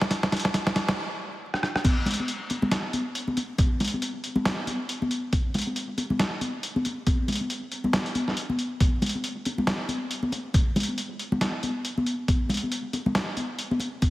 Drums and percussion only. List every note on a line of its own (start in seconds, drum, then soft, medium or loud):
0.01 snare medium
0.11 kick loud
0.11 snare loud
0.11 closed hi-hat medium
0.23 snare medium
0.32 snare loud
0.32 closed hi-hat medium
0.37 closed hi-hat medium
0.40 closed hi-hat medium
0.45 snare medium
0.54 kick loud
0.54 snare loud
0.54 closed hi-hat medium
0.67 snare medium
0.76 snare loud
0.76 closed hi-hat medium
0.89 snare loud
1.54 cross-stick medium
1.63 cross-stick medium
1.76 cross-stick medium
1.84 kick loud
1.84 closed hi-hat medium
1.84 crash loud
1.84 muted conga medium
1.84 high conga medium
2.06 closed hi-hat medium
2.06 muted conga medium
2.06 low conga loud
2.11 closed hi-hat medium
2.14 closed hi-hat medium
2.20 high conga medium
2.28 closed hi-hat medium
2.50 closed hi-hat medium
2.50 muted conga medium
2.62 high conga loud
2.62 low conga medium
2.72 snare loud
2.72 closed hi-hat medium
2.93 closed hi-hat medium
2.93 high conga medium
3.15 closed hi-hat medium
3.28 high conga medium
3.37 closed hi-hat medium
3.37 muted conga medium
3.58 kick loud
3.58 closed hi-hat medium
3.58 muted conga medium
3.58 high conga loud
3.80 closed hi-hat medium
3.80 muted conga medium
3.80 low conga loud
3.84 closed hi-hat medium
3.88 closed hi-hat medium
3.94 high conga medium
4.02 closed hi-hat medium
4.24 closed hi-hat medium
4.36 high conga loud
4.36 low conga medium
4.46 snare loud
4.46 closed hi-hat medium
4.67 closed hi-hat medium
4.67 high conga medium
4.89 closed hi-hat medium
5.02 high conga medium
5.11 closed hi-hat medium
5.33 kick loud
5.33 closed hi-hat medium
5.33 muted conga medium
5.33 high conga medium
5.54 closed hi-hat medium
5.54 muted conga soft
5.54 low conga loud
5.58 closed hi-hat medium
5.62 closed hi-hat medium
5.67 high conga medium
5.76 closed hi-hat medium
5.98 closed hi-hat medium
5.98 muted conga medium
6.10 high conga medium
6.10 low conga medium
6.20 snare loud
6.20 closed hi-hat medium
6.41 closed hi-hat medium
6.41 high conga medium
6.63 closed hi-hat medium
6.76 high conga medium
6.85 closed hi-hat medium
6.85 muted conga medium
7.07 kick loud
7.07 closed hi-hat medium
7.07 muted conga medium
7.07 high conga loud
7.28 closed hi-hat soft
7.28 muted conga medium
7.28 low conga medium
7.32 closed hi-hat medium
7.35 closed hi-hat medium
7.41 high conga medium
7.50 closed hi-hat medium
7.72 closed hi-hat medium
7.84 high conga loud
7.84 low conga medium
7.93 snare loud
7.93 closed hi-hat medium
8.06 closed hi-hat soft
8.15 closed hi-hat medium
8.15 high conga medium
8.28 snare soft
8.37 closed hi-hat medium
8.49 high conga medium
8.59 closed hi-hat medium
8.80 kick loud
8.80 closed hi-hat medium
8.80 muted conga medium
8.80 high conga medium
9.02 closed hi-hat soft
9.02 muted conga soft
9.02 low conga medium
9.06 closed hi-hat medium
9.09 closed hi-hat medium
9.15 high conga medium
9.24 closed hi-hat medium
9.45 closed hi-hat medium
9.45 muted conga medium
9.58 high conga medium
9.58 low conga medium
9.67 snare loud
9.67 closed hi-hat medium
9.89 closed hi-hat medium
9.89 high conga medium
10.11 closed hi-hat medium
10.23 high conga medium
10.32 closed hi-hat medium
10.32 muted conga medium
10.54 kick loud
10.54 closed hi-hat medium
10.54 muted conga medium
10.54 high conga medium
10.76 closed hi-hat soft
10.76 muted conga medium
10.76 low conga loud
10.80 closed hi-hat medium
10.83 closed hi-hat medium
10.88 high conga medium
10.98 closed hi-hat medium
11.19 closed hi-hat medium
11.32 high conga medium
11.32 low conga medium
11.41 snare loud
11.41 closed hi-hat medium
11.63 closed hi-hat medium
11.63 high conga medium
11.85 closed hi-hat medium
11.98 high conga medium
12.06 closed hi-hat soft
12.28 kick loud
12.28 closed hi-hat medium
12.28 muted conga medium
12.28 high conga medium
12.49 closed hi-hat soft
12.49 muted conga medium
12.49 low conga loud
12.54 closed hi-hat medium
12.57 closed hi-hat medium
12.63 high conga medium
12.72 closed hi-hat medium
12.93 closed hi-hat medium
12.93 muted conga medium
13.06 high conga medium
13.06 low conga medium
13.15 snare loud
13.15 closed hi-hat medium
13.37 closed hi-hat medium
13.37 high conga medium
13.59 closed hi-hat medium
13.71 high conga medium
13.80 closed hi-hat medium
13.80 muted conga medium
14.02 kick loud
14.02 closed hi-hat medium
14.02 muted conga medium
14.02 high conga medium